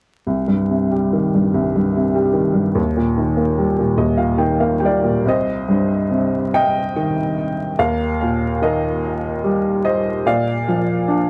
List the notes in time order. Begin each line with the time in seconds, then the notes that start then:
0.27 C2
0.48 G2
0.70 C3
0.92 G3
1.13 D#3
1.34 G2
1.54 C2
1.76 G2
1.96 C3
2.15 G3
2.34 D#3
2.54 G2
2.75 D#2
2.97 A#2
3.18 D#3
3.37 A#3
3.58 G3
3.79 A#2
3.97 D#2 D#5
4.18 A#2 F5
4.38 D#3 G5
4.60 A#3 F5
4.80 G3 G5
4.85 A#4 D5
5.03 A#2
5.25 C2 C5 D#5
5.68 G2
6.10 C3
6.54 D#5 G5
6.96 D#3
7.79 D#2 A#4 F5
8.22 A#2
8.62 D#3 A#4 D#5
9.44 G3
9.85 C5 D#5
10.26 A#2 D5 F5
10.68 F3
11.08 D4